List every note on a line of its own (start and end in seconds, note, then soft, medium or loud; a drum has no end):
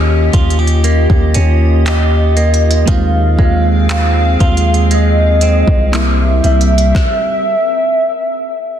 0.00 0.30 D#2 loud
0.00 2.83 D#3 medium
0.00 2.87 D#3 medium
0.00 0.83 A#3 medium
0.00 2.84 A#3 medium
0.00 1.34 C#4 medium
0.00 2.84 C#4 medium
0.00 2.84 F4 medium
0.00 2.84 G4 medium
0.00 2.85 G4 medium
0.00 2.84 D#5 medium
0.33 1.07 D#2 loud
0.33 0.59 F4 medium
0.33 kick medium
0.33 closed hi-hat medium
0.50 closed hi-hat soft
0.59 1.85 G4 medium
0.67 closed hi-hat soft
0.84 2.36 A#3 medium
0.84 closed hi-hat medium
1.10 1.34 D#2 medium
1.10 kick medium
1.34 2.84 D#2 loud
1.34 2.98 C#4 medium
1.34 closed hi-hat medium
1.86 2.98 G4 medium
1.86 2.85 D#5 loud
1.86 clap loud
1.86 closed hi-hat medium
2.37 2.98 A#3 medium
2.37 closed hi-hat soft
2.54 closed hi-hat medium
2.71 closed hi-hat medium
2.86 3.37 D#2 loud
2.86 6.03 D#3 medium
2.86 5.88 G#3 medium
2.86 5.90 C4 medium
2.86 5.89 C4 medium
2.86 5.90 G#4 medium
2.86 5.90 F5 medium
2.86 3.86 F5 loud
2.86 kick loud
2.86 closed hi-hat medium
2.90 5.90 F4 medium
3.39 4.36 D#2 loud
3.39 4.90 G#3 medium
3.39 kick medium
3.89 5.42 C4 medium
3.89 4.88 F5 loud
3.89 clap loud
3.89 closed hi-hat medium
4.40 5.64 D#2 loud
4.40 6.03 F4 medium
4.40 kick medium
4.40 closed hi-hat medium
4.57 closed hi-hat soft
4.74 closed hi-hat medium
4.91 6.03 G#3 medium
4.91 5.96 D#5 loud
4.91 closed hi-hat medium
5.41 7.55 C4 medium
5.41 closed hi-hat medium
5.68 6.41 C2 loud
5.68 kick medium
5.92 6.94 C3 medium
5.92 7.05 C3 medium
5.92 6.95 G3 medium
5.92 6.95 A#3 medium
5.92 6.95 E4 medium
5.92 6.45 E5 loud
5.92 clap loud
5.92 closed hi-hat medium
6.44 6.93 C2 loud
6.44 7.55 G3 medium
6.44 8.80 E5 loud
6.44 closed hi-hat soft
6.61 closed hi-hat medium
6.78 closed hi-hat medium
6.95 kick loud
6.95 snare medium